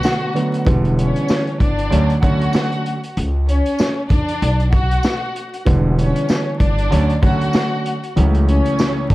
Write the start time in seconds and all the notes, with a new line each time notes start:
Already playing: D3 F#3 A3 B3 F#4 F#5
0.03 snare, tambourine
0.34 D3 F#3 A3 B3, closed hi-hat
0.54 closed hi-hat
0.66 E1 D3 E3 G3 B3, kick, closed hi-hat
0.85 closed hi-hat
0.99 C#4 C#5, closed hi-hat
1.16 closed hi-hat
1.29 snare, tambourine
1.47 closed hi-hat
1.60 G1 D4 D5, kick, closed hi-hat
1.79 closed hi-hat
1.90 D2 D3 F#3 A3 C#4, closed hi-hat
2.10 closed hi-hat
2.22 D3 F#3 A3 C#4 F#4 F#5, kick, closed hi-hat
2.41 closed hi-hat
2.53 snare, tambourine
2.72 closed hi-hat
2.86 closed hi-hat
3.04 closed hi-hat
3.17 C#2, closed hi-hat
3.47 C#4 C#5, closed hi-hat
3.66 closed hi-hat
3.79 snare, tambourine
4.10 E2 D4 D5, kick, closed hi-hat
4.29 closed hi-hat
4.42 B1, closed hi-hat
4.60 closed hi-hat
4.72 F#4 F#5, kick, closed hi-hat
4.91 closed hi-hat
5.03 snare, tambourine
5.36 closed hi-hat
5.54 closed hi-hat
5.65 E1 D3 E3 G3 B3, kick, closed hi-hat
5.98 C#4 C#5, closed hi-hat
6.16 closed hi-hat
6.29 snare, tambourine
6.59 G1 D4 D5, kick, closed hi-hat
6.78 closed hi-hat
6.90 D2 D3 F#3 A3 C#4, closed hi-hat
7.10 closed hi-hat
7.22 D3 F#3 A3 C#4 F#4 F#5, kick, closed hi-hat
7.41 closed hi-hat
7.53 snare, tambourine
7.86 closed hi-hat
8.04 closed hi-hat
8.16 C#2 E3 F#3 A3 C#4, closed hi-hat
8.35 closed hi-hat
8.47 C#4 C#5, closed hi-hat
8.66 closed hi-hat
8.79 snare, tambourine
9.10 E2 D4 D5, kick, closed hi-hat